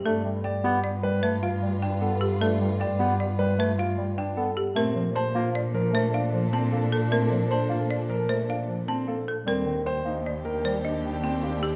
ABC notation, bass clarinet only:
X:1
M:6/4
L:1/8
Q:1/4=153
K:Gm
V:1 name="Bass clarinet"
A, G, z =B, z G, A, z G, z B, z | A, G, z =B, z G, A, z G, z B, z | A, F, z B, z F, A, z F, z B, z | A, F, z B, z F, A, z F, z B, z |
G, E, z B, z E, G, z E, z B, z |]